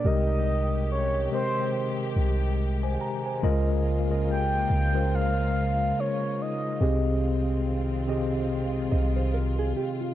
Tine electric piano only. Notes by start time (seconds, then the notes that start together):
0.04 C3 G#3 G4 A#4 D#5
1.31 C3 G#3 G4 A#4 D#5
2.83 C5 G#5
3.01 A#5
3.26 C5 G#5
3.42 C#3 G#3 F4 A#4 D#5
4.09 C#3 G#3 F4 A#4 D#5
4.94 C#3 G#3 F4 A#4 C5
6.80 C3 C4 G4 G#4 D#5
8.07 C3 C4 G4 G#4 D#5